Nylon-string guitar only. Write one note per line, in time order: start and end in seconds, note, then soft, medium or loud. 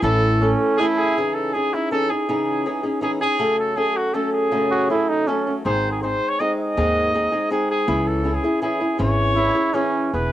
0.02 0.40 A2 medium
0.02 1.17 E3 medium
0.02 0.40 A3 medium
0.02 0.41 C#4 medium
0.02 0.42 E4 medium
0.02 0.41 A4 medium
0.41 0.78 A3 medium
0.41 0.80 C#4 medium
0.41 0.80 E4 soft
0.41 0.80 A4 medium
0.80 1.17 A3 medium
0.80 1.17 C#4 medium
0.80 1.18 E4 medium
0.80 1.18 A4 medium
1.17 1.54 C#3 medium
1.17 1.53 E3 medium
1.17 1.54 C#4 medium
1.17 1.54 D#4 medium
1.17 1.55 G#4 medium
1.54 1.73 E3 medium
1.54 1.74 C#4 soft
1.54 1.74 D#4 soft
1.54 1.72 G#4 soft
1.74 1.91 C#4 soft
1.74 1.92 D#4 soft
1.74 1.92 G#4 soft
1.91 2.10 E3 medium
1.91 2.10 C#4 medium
1.91 2.10 D#4 medium
1.91 2.09 G#4 medium
2.10 2.28 C#4 soft
2.10 2.28 D#4 soft
2.10 2.29 G#4 soft
2.29 2.66 C#3 medium
2.29 2.64 E3 medium
2.29 2.66 C#4 medium
2.29 2.65 D#4 medium
2.29 2.66 G#4 medium
2.65 2.84 E3 soft
2.65 2.84 C#4 medium
2.65 2.83 D#4 medium
2.65 2.82 G#4 medium
2.83 3.01 C#4 soft
2.83 3.01 D#4 medium
2.83 3.02 G#4 medium
3.01 3.21 E3 medium
3.01 3.21 C#4 medium
3.01 3.21 D#4 medium
3.01 3.19 G#4 medium
3.21 3.39 C#4 soft
3.21 3.39 D#4 soft
3.21 3.39 G#4 soft
3.39 3.76 F#2 medium
3.39 3.76 C#3 medium
3.39 3.75 F#3 medium
3.39 3.76 A3 medium
3.39 3.76 C#4 medium
3.39 3.76 A4 medium
3.76 4.13 F#3 soft
3.76 4.13 A3 medium
3.76 4.13 C#4 soft
3.76 4.14 A4 medium
4.14 4.51 F#3 medium
4.14 4.51 A3 medium
4.14 4.51 C#4 medium
4.14 4.52 A4 medium
4.52 4.89 F#2 medium
4.52 4.89 C#3 medium
4.52 4.88 F#3 medium
4.52 4.89 A3 medium
4.52 4.90 C#4 medium
4.89 5.26 F#3 soft
4.89 5.27 A3 medium
4.89 5.27 C#4 soft
4.89 5.27 A4 medium
5.27 5.46 F#3 medium
5.27 5.47 A3 medium
5.27 5.46 C#4 medium
5.27 5.45 A4 medium
5.47 5.65 F#3 soft
5.47 5.65 A3 soft
5.47 5.65 C#4 soft
5.47 5.65 A4 soft
5.65 6.03 G#2 medium
5.65 6.03 D#3 medium
5.65 6.02 G#3 medium
5.65 6.02 C4 medium
5.65 6.02 D#4 medium
5.65 6.04 G#4 medium
6.03 6.39 G#3 soft
6.03 6.39 C4 soft
6.03 6.40 D#4 soft
6.03 6.41 G#4 medium
6.40 6.77 G#3 medium
6.40 6.77 C4 medium
6.40 6.77 D#4 medium
6.40 6.78 G#4 medium
6.77 7.14 G#2 medium
6.77 7.14 D#3 medium
6.77 7.13 G#3 medium
6.77 7.13 C4 medium
6.77 7.14 D#4 medium
6.77 7.15 G#4 medium
7.14 7.32 G#3 soft
7.14 7.32 C4 medium
7.14 7.31 D#4 medium
7.14 7.31 G#4 medium
7.32 7.49 G#3 soft
7.32 7.50 C4 soft
7.32 7.50 D#4 soft
7.32 7.51 G#4 medium
7.50 7.87 G#3 medium
7.50 7.88 C4 medium
7.50 7.88 D#4 medium
7.50 7.88 G#4 medium
7.88 8.25 C#3 medium
7.88 8.24 E3 medium
7.88 8.24 C#4 medium
7.88 8.25 E4 medium
7.88 8.26 G#4 medium
8.24 8.43 E3 soft
8.24 8.44 C#4 medium
8.24 8.43 E4 medium
8.24 8.43 G#4 medium
8.44 8.61 C#4 soft
8.44 8.61 E4 soft
8.44 8.62 G#4 soft
8.62 8.81 E3 medium
8.62 8.81 C#4 medium
8.62 8.80 E4 medium
8.62 8.79 G#4 medium
8.80 8.98 C#4 soft
8.80 8.98 E4 soft
8.80 8.98 G#4 soft
8.98 9.36 C#3 medium
8.98 9.36 E3 medium
8.98 9.36 C#4 medium
8.98 9.37 E4 medium
8.98 9.37 G#4 medium
9.36 9.56 E3 soft
9.36 9.55 C#4 medium
9.36 9.54 E4 soft
9.36 9.54 G#4 soft
9.55 9.73 C#4 soft
9.55 9.74 E4 soft
9.55 9.74 G#4 soft
9.74 10.13 E3 medium
9.74 10.13 C#4 medium
9.74 10.14 E4 medium
9.74 10.14 G#4 medium
10.13 10.32 E3 soft
10.13 10.32 B3 medium
10.13 10.32 E4 medium
10.13 10.32 G#4 medium